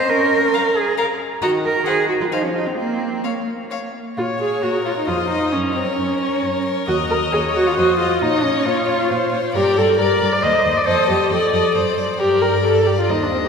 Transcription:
0.00 0.11 C5 medium
0.09 0.46 C#4 medium
0.09 0.78 A#4 medium
0.54 0.62 F5 soft
0.54 0.62 A#5 soft
0.76 0.98 G#4 medium
0.98 1.06 A#4 medium
0.98 1.06 F5 soft
0.98 1.06 A#5 soft
1.42 1.79 D#3 medium
1.42 1.50 F#4 medium
1.42 1.50 D#5 soft
1.42 1.50 A#5 soft
1.65 1.86 A#4 medium
1.86 2.24 D#3 medium
1.86 2.08 G#4 medium
1.86 1.95 C5 soft
1.86 1.94 F#5 soft
2.09 2.14 F#4 medium
2.21 2.26 F4 medium
2.32 2.70 F3 soft
2.32 2.45 D#4 medium
2.32 2.40 C5 soft
2.32 2.40 F5 soft
2.44 2.54 C#4 soft
2.55 2.68 D#4 medium
2.67 2.77 C4 soft
2.78 3.17 A#3 soft
2.78 3.26 C4 medium
3.24 3.94 A#3 soft
3.24 3.33 C#5 soft
3.24 3.32 F5 soft
3.70 3.78 C#5 soft
3.70 3.79 F5 soft
4.17 4.56 A#2 soft
4.17 4.26 F4 medium
4.17 4.59 C#5 soft
4.40 4.64 G#4 medium
4.40 4.84 C#5 soft
4.63 5.00 A#2 soft
4.63 4.85 F#4 soft
4.63 5.10 A#4 soft
4.85 4.90 F4 medium
4.85 5.07 C#5 soft
4.97 5.09 D#4 soft
5.07 5.45 F2 soft
5.07 5.29 F4 medium
5.07 5.55 C5 soft
5.07 5.30 D#5 soft
5.30 5.54 D#4 soft
5.30 5.52 D#5 soft
5.53 5.91 F#2 medium
5.53 5.77 C#4 medium
5.53 6.42 A#4 soft
5.75 5.98 C4 soft
5.75 6.19 C#5 soft
5.98 6.36 F#2 soft
5.98 6.64 C#4 medium
6.21 6.64 C#5 soft
6.43 6.80 F#2 medium
6.43 7.34 A#4 soft
6.66 6.87 C#5 soft
6.88 7.26 D#2 medium
6.88 6.96 F#4 medium
6.88 7.10 D#5 soft
7.10 7.18 A#4 medium
7.10 7.54 D#5 soft
7.32 7.70 D#2 soft
7.32 7.40 G#4 medium
7.32 7.79 C#5 soft
7.55 7.68 F#4 medium
7.55 7.76 D#5 soft
7.67 7.77 F4 medium
7.77 8.15 F2 medium
7.77 7.99 F#4 medium
7.77 8.20 C5 soft
7.77 7.99 D#5 soft
7.99 8.24 F4 medium
7.99 8.21 D#5 soft
8.21 8.59 A#2 medium
8.21 8.45 D#4 medium
8.21 8.43 C#5 soft
8.21 8.67 D#5 medium
8.44 8.68 C#4 medium
8.44 8.87 C#5 soft
8.66 9.03 A#2 medium
8.66 9.33 F4 medium
8.66 9.09 C#5 soft
8.89 9.32 C#5 soft
9.10 9.47 A#2 medium
9.10 9.56 C5 soft
9.32 9.54 C#5 soft
9.55 9.63 G2 medium
9.55 9.79 G4 medium
9.55 9.98 A#4 soft
9.55 9.76 D5 medium
9.77 9.85 G2 soft
9.77 9.99 A4 medium
9.77 9.97 D5 soft
9.98 10.07 G2 soft
9.98 10.34 A#4 medium
9.98 10.20 D5 soft
9.98 10.44 D5 medium
10.21 10.30 G2 medium
10.21 10.43 D5 soft
10.33 10.45 D5 medium
10.42 10.52 D#2 medium
10.42 10.86 C5 soft
10.42 10.64 C5 soft
10.42 10.78 D#5 medium
10.65 10.74 D#2 soft
10.65 10.86 C5 soft
10.77 10.88 D5 medium
10.86 10.96 F2 soft
10.86 11.30 A4 soft
10.86 11.09 C5 medium
10.86 11.08 D#5 soft
11.09 11.17 F2 soft
11.09 11.33 G4 medium
11.09 11.30 D#5 soft
11.31 11.39 F2 soft
11.31 11.97 A4 medium
11.31 11.76 D5 medium
11.31 11.52 D#5 soft
11.53 11.61 F2 soft
11.53 11.74 D#5 soft
11.75 11.84 F#2 soft
11.75 12.21 C5 soft
11.75 11.97 D5 soft
11.97 12.05 F#2 soft
11.97 12.18 D5 soft
12.19 13.11 G2 soft
12.19 12.43 G4 medium
12.19 12.66 A#4 soft
12.19 13.11 D5 soft
12.42 12.64 A#4 medium
12.65 12.89 A4 medium
12.65 13.12 D5 soft
12.87 12.98 G4 soft
12.99 13.12 F4 soft
13.10 13.48 D#2 soft
13.10 13.24 D#4 soft
13.10 13.48 C5 soft
13.10 13.48 D#5 soft
13.22 13.32 D4 soft
13.33 13.37 C4 soft
13.45 13.48 G4 soft

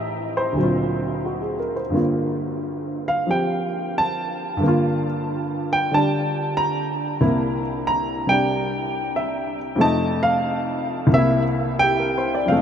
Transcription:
0.00 0.57 A2 medium
0.00 0.57 E3 soft
0.00 0.57 C4 soft
0.00 0.58 G4 medium
0.00 0.33 E5 medium
0.37 1.75 C5 medium
0.53 1.92 D2 soft
0.53 1.93 A#2 soft
0.58 1.94 F#3 soft
0.58 1.96 C4 soft
0.63 1.94 F4 medium
1.26 1.58 F#4 soft
1.42 1.72 G#4 soft
1.60 1.81 A#4 soft
1.76 2.01 C5 soft
1.90 4.55 G2 soft
1.90 4.59 D3 soft
1.90 4.62 A#3 soft
1.95 4.63 F4 medium
3.08 3.29 F5 medium
3.27 4.61 F3 soft
3.27 4.62 C4 soft
3.27 4.62 G4 soft
3.31 3.93 G5 medium
3.98 5.04 A5 loud
4.57 7.18 G2 medium
4.57 5.90 D3 medium
4.63 7.20 A#3 medium
4.68 7.24 F4 medium
5.73 5.92 G5 medium
5.92 7.20 D3 soft
5.92 7.21 G3 soft
5.92 7.21 D4 medium
5.92 6.54 A5 medium
6.57 7.61 A#5 medium
7.21 9.80 C2 medium
7.21 8.25 C3 medium
7.21 9.80 A#3 medium
7.21 9.80 E4 medium
7.87 8.29 A#5 medium
8.27 9.76 C3 soft
8.27 9.79 G3 soft
8.27 9.80 D4 medium
8.27 9.11 G5 loud
9.16 9.58 E5 medium
9.76 11.11 F2 medium
9.76 11.09 C3 medium
9.76 11.12 A3 medium
9.80 11.13 D#4 medium
9.80 10.23 A5 loud
10.23 11.08 F5 medium
11.07 12.48 C2 medium
11.11 12.47 C3 medium
11.11 12.52 A#3 medium
11.11 11.42 E5 loud
11.18 12.53 E4 medium
11.79 12.16 G4 medium
11.79 12.45 G5 loud
12.00 12.29 A#4 medium
12.18 12.38 C5 medium
12.35 12.58 D5 medium
12.45 12.62 F2 soft
12.45 12.62 C3 soft
12.45 12.62 F5 medium
12.52 12.62 A3 soft
12.52 12.62 A4 medium
12.56 12.62 D#4 medium

